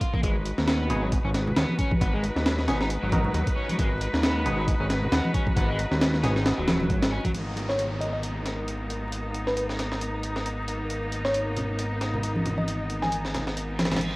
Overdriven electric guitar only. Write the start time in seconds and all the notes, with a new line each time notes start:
0.01 F4
0.13 A#3
0.23 G#3
0.67 B3
1.02 F#3
1.25 C#4
1.57 B3
1.79 C#4
2.01 B3
2.14 G#3
2.68 C#4
2.80 D#4
3.03 F#3
3.56 C#4
3.69 F#3
3.79 G#3
4.23 B3
4.58 F#3
4.80 C#4
5.12 B3
5.34 C#4
5.56 B3
5.69 G#3
6.23 C#4
6.36 D#4
6.58 F#3
7.12 C#4
7.25 F#3